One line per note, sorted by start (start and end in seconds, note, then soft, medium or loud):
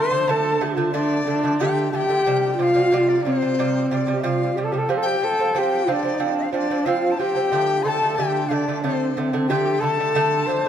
0.00 0.32 C5 loud
0.00 0.30 C6 loud
0.11 0.24 D3 medium
0.11 0.25 A3 medium
0.28 0.54 D3 medium
0.28 0.55 A3 loud
0.28 0.66 A4 loud
0.28 0.67 A5 medium
0.61 0.74 D3 medium
0.61 0.74 A3 medium
0.61 0.93 F4 medium
0.77 0.90 D3 medium
0.77 0.90 A3 medium
0.92 1.20 D3 medium
0.92 1.20 A3 loud
0.92 1.24 D4 medium
0.92 1.55 D5 medium
1.27 1.40 D3 medium
1.27 1.40 A3 medium
1.27 1.63 D4 loud
1.44 1.56 D3 medium
1.44 1.57 A3 medium
1.58 1.86 D3 loud
1.58 1.86 A3 loud
1.58 1.93 G4 loud
1.58 1.89 G5 medium
1.92 2.06 D3 medium
1.92 2.06 A3 medium
1.92 2.54 G4 loud
1.92 2.53 G5 loud
1.92 1.97 A5 medium
2.09 2.22 D3 medium
2.09 2.22 A3 medium
2.26 2.52 C3 medium
2.26 2.52 G3 loud
2.53 2.59 G5 medium
2.58 2.71 C3 medium
2.58 2.72 G3 medium
2.58 3.27 F4 loud
2.58 2.64 G5 medium
2.63 3.10 F5 loud
2.75 2.88 C3 medium
2.75 2.88 G3 medium
2.92 3.18 C3 loud
2.92 3.19 G3 loud
3.09 3.25 D5 medium
3.23 3.38 C3 medium
3.23 3.38 G3 medium
3.23 4.15 C4 loud
3.23 3.89 C5 medium
3.42 3.54 C3 medium
3.42 3.54 G3 medium
3.59 3.84 C3 medium
3.59 3.84 G3 loud
3.90 4.03 C3 medium
3.90 4.04 G3 medium
3.90 4.25 D5 medium
4.07 4.20 C3 medium
4.07 4.20 G3 medium
4.15 4.25 G4 medium
4.23 4.49 C3 loud
4.23 4.49 G3 loud
4.23 4.57 F4 medium
4.23 4.56 F5 medium
4.55 4.69 C3 medium
4.55 4.70 G3 medium
4.55 4.66 G4 medium
4.64 4.73 A4 medium
4.72 4.85 C3 medium
4.72 4.86 G3 medium
4.72 4.79 G4 medium
4.78 4.91 A4 medium
4.89 5.15 F3 loud
4.89 5.15 C4 loud
4.89 4.98 G4 medium
4.97 5.08 A4 medium
5.02 5.25 G4 medium
5.02 5.50 G5 medium
5.22 5.35 F3 medium
5.22 5.35 C4 medium
5.22 5.60 A4 loud
5.39 5.51 F3 medium
5.39 5.52 C4 medium
5.55 5.81 F3 medium
5.55 5.81 C4 loud
5.55 5.92 G4 medium
5.55 5.90 G5 medium
5.88 6.00 F3 medium
5.88 6.01 C4 medium
5.88 6.54 D4 medium
5.88 5.93 F5 medium
5.92 6.37 D5 medium
6.03 6.16 F3 medium
6.03 6.17 C4 medium
6.20 6.46 F3 medium
6.20 6.46 C4 loud
6.38 6.52 F5 medium
6.53 6.66 F3 medium
6.53 6.66 C4 medium
6.53 6.87 D4 medium
6.53 6.87 D5 medium
6.70 6.83 F3 medium
6.70 6.83 C4 medium
6.85 7.12 F3 loud
6.85 7.13 C4 loud
6.85 7.21 F4 medium
6.85 7.13 F5 medium
7.11 7.20 A5 medium
7.19 7.32 F3 medium
7.19 7.33 C4 medium
7.19 7.88 G4 loud
7.19 7.84 G5 medium
7.35 7.48 F3 medium
7.35 7.49 C4 medium
7.52 7.78 D3 medium
7.52 7.78 A3 loud
7.83 7.98 D3 medium
7.83 7.98 A3 medium
7.83 8.20 A4 medium
7.83 7.89 C6 medium
7.88 8.17 A5 loud
8.02 8.15 D3 medium
8.02 8.15 A3 medium
8.15 8.44 D3 medium
8.15 8.45 A3 loud
8.15 8.47 G4 loud
8.15 8.50 G5 medium
8.48 8.63 D3 medium
8.48 8.64 A3 medium
8.48 8.85 D4 medium
8.48 8.55 F5 medium
8.54 8.81 D5 medium
8.68 8.80 D3 medium
8.68 8.81 A3 medium
8.82 9.10 D3 medium
8.82 9.10 A3 medium
8.82 9.16 C4 medium
8.82 9.19 C5 medium
9.17 9.30 D3 medium
9.17 9.30 A3 medium
9.17 9.50 C4 medium
9.33 9.46 D3 medium
9.33 9.46 A3 medium
9.48 9.76 D3 loud
9.48 9.76 A3 loud
9.48 9.82 G4 loud
9.48 9.83 G5 medium
9.80 9.95 D3 medium
9.80 9.96 A3 medium
9.80 10.47 A4 loud
9.80 9.86 C6 medium
9.85 10.69 A5 loud
10.00 10.12 D3 medium
10.00 10.13 A3 medium
10.15 10.41 D3 loud
10.15 10.42 A3 loud
10.46 10.61 D3 medium
10.46 10.62 A3 medium
10.46 10.69 C5 loud
10.65 10.69 D3 medium